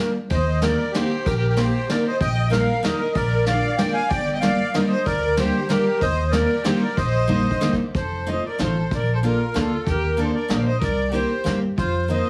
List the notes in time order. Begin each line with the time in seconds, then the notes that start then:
Already playing: G3 A#3 D4 F4 A#4
0.30 D#2 C5 D#5, kick, ride
0.35 C5
0.62 A#3 C4 D#4 G4 A#4 D5, snare, ride
0.66 A#4
0.91 A#3 C4 G4 C5, snare, ride
0.96 D#4 G4
1.24 A#1 G4 A#4, kick, ride
1.29 G4
1.37 G4 A#4
1.48 G4 A#4
1.57 A#3 C4 D#4 G4 C5, snare, ride
1.63 G4
1.89 A#3 C4 D#4 G4 A#4 D5, snare, ride
1.94 A#4
2.06 C5 D#5
2.20 A#1 D#5 G5, kick, ride
2.50 G3 A#3 D#4 G4 A#4 F5, snare, ride
2.54 A#4
2.83 G3 A#3 D#4 G4 A#4 D#5, snare, ride
2.87 A#4
3.15 A#1 A#4 D5, kick, ride
3.46 G#3 A#3 D4 F4 D5 F5, snare, ride
3.77 G#3 A#3 D4 F4 D5 G5, snare, ride
3.93 F5 G#5
3.97 F5
4.09 G1 D5 G5, kick, ride
4.34 D#5 G5
4.40 G3 A#3 D4 F4 D5 F5, snare, ride
4.74 G3 A#3 D4 F4 A#4 D#5, snare, ride
4.81 A#4 D5
4.87 C5 D#5
5.06 D2 A#4 D5, kick, ride
5.37 G3 A#3 D4 F4 G4 C5, snare, ride
5.69 G3 A#3 D4 F4 G4 A#4, snare, ride
6.00 D#2 C5 D#5, kick, ride
6.31 G3 A#3 C4 D#4 A#4 D5, snare, ride
6.64 G3 A#3 C4 D#4 G4 C5, snare, ride
6.82 A#4 D5
6.97 A#1 C5 D#5, kick, ride
7.28 G3 A#3 C4 D#4, kick
7.51 kick
7.61 G3 A#3 C4 D#4, snare
7.73 kick
7.94 F1 C5, kick, closed hi-hat
7.99 A4
8.27 A3 C4 D#4 F4 D#5, closed hi-hat
8.32 C5
8.46 A#4 D5
8.59 A1 A3 C4 D#4 F4 C5, snare, closed hi-hat
8.63 A4
8.91 A#1 A#4 D5, kick, closed hi-hat
9.15 A4 C5
9.23 A#3 D4 F4 A4 A#4, closed hi-hat
9.54 D2 A#3 D4 F4 A4, snare, closed hi-hat
9.60 A4
9.87 D#2 G4 A#4, kick, closed hi-hat
10.17 A#3 D4 D#4 G4 A#4 D5, closed hi-hat
10.22 A4 C5
10.34 A#4 D5
10.49 A#1 A#3 D4 D#4 G4 A#4 D#5, snare, closed hi-hat
10.58 D5 F5
10.65 C5 D#5
10.81 C2 A#4 D5, kick, closed hi-hat
11.12 A#3 C4 E4 G4 C5, closed hi-hat
11.44 G2 A#3 C4 E4 G4, snare, closed hi-hat
11.78 F2 F4 C5, kick, closed hi-hat
12.08 A#3 C4 D#4 F4 C5 D#5, closed hi-hat